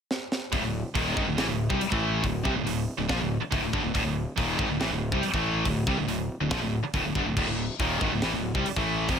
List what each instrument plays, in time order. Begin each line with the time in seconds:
0.11 snare
0.32 snare
0.52 fingered electric bass D1, distorted electric guitar D2 A2, kick, open hi-hat
0.62 fingered electric bass D1, distorted electric guitar D2 A2
0.95 fingered electric bass D#1, distorted electric guitar D#2 A#2 D#3, kick, open hi-hat
1.16 fingered electric bass G#1, distorted electric guitar G#2 D#3, kick
1.27 fingered electric bass D1, distorted electric guitar D2 A2
1.38 fingered electric bass A1, distorted electric guitar A2 E3, snare, open hi-hat
1.48 fingered electric bass D1, distorted electric guitar D2 A2
1.70 fingered electric bass C2, distorted electric guitar C3 G3, kick
1.81 muted fingered electric bass stroke, muted distorted electric guitar stroke, open hi-hat
1.92 fingered electric bass A1, distorted electric guitar A2 E3 A3, kick
2.24 fingered electric bass D1, distorted electric guitar D2 A2, kick, open hi-hat
2.44 fingered electric bass C2, distorted electric guitar C3 G3, kick
2.55 fingered electric bass D1, distorted electric guitar D2 A2
2.65 fingered electric bass D1, distorted electric guitar D2 A2, open hi-hat
2.98 fingered electric bass D1, distorted electric guitar D2 A2
3.08 fingered electric bass A#1, distorted electric guitar A#2 F3, kick, snare, open hi-hat
3.21 fingered electric bass D1, distorted electric guitar D2 A2
3.42 muted distorted electric guitar stroke, muted fingered electric bass stroke
3.52 fingered electric bass D1, distorted electric guitar D2 A2, kick, open hi-hat
3.62 fingered electric bass D1, distorted electric guitar D2 A2
3.73 fingered electric bass G1, distorted electric guitar G2 D3, kick
3.84 fingered electric bass D1, distorted electric guitar D2 A2
3.94 fingered electric bass D1, distorted electric guitar D2 A2, kick, open hi-hat
4.05 fingered electric bass D1, distorted electric guitar D2 A2
4.37 fingered electric bass D#1, distorted electric guitar D#2 A#2 D#3, kick, open hi-hat
4.58 fingered electric bass G#1, distorted electric guitar G#2 D#3, kick
4.69 fingered electric bass D1, distorted electric guitar D2 A2
4.79 fingered electric bass A1, distorted electric guitar A2 E3, snare, open hi-hat
4.91 fingered electric bass D1, distorted electric guitar D2 A2
5.12 fingered electric bass C2, distorted electric guitar C3 G3, kick
5.23 muted distorted electric guitar stroke, muted fingered electric bass stroke, open hi-hat
5.33 fingered electric bass A1, distorted electric guitar A2 E3 A3, kick
5.65 fingered electric bass D1, distorted electric guitar D2 A2, kick, open hi-hat
5.87 fingered electric bass C2, distorted electric guitar C3 G3, kick
5.98 fingered electric bass D1, distorted electric guitar D2 A2
6.08 fingered electric bass D1, distorted electric guitar D2 A2, open hi-hat
6.41 fingered electric bass D1, distorted electric guitar D2 A2
6.51 fingered electric bass A#1, distorted electric guitar A#2 F3, kick, snare, open hi-hat
6.62 fingered electric bass D1, distorted electric guitar D2 A2
6.83 muted distorted electric guitar stroke, muted fingered electric bass stroke
6.93 fingered electric bass D1, distorted electric guitar D2 A2, kick, open hi-hat
7.05 fingered electric bass D1, distorted electric guitar D2 A2
7.15 fingered electric bass G1, distorted electric guitar G2 D3, kick
7.26 fingered electric bass D1, distorted electric guitar D2 A2
7.37 fingered electric bass D1, distorted electric guitar D2 A2, kick, crash
7.47 fingered electric bass D1, distorted electric guitar D2 A2
7.79 fingered electric bass D#1, distorted electric guitar D#2 A#2 D#3, kick, open hi-hat
8.01 fingered electric bass G#1, distorted electric guitar G#2 D#3, kick
8.12 fingered electric bass D1, distorted electric guitar D2 A2
8.22 fingered electric bass A1, distorted electric guitar A2 E3, snare, open hi-hat
8.33 fingered electric bass D1, distorted electric guitar D2 A2
8.55 fingered electric bass C2, distorted electric guitar C3 G3, kick
8.66 muted distorted electric guitar stroke, muted fingered electric bass stroke, open hi-hat
8.76 fingered electric bass A1, distorted electric guitar A2 E3 A3, kick
9.08 fingered electric bass F1, distorted electric guitar F2 C3 F3, kick, open hi-hat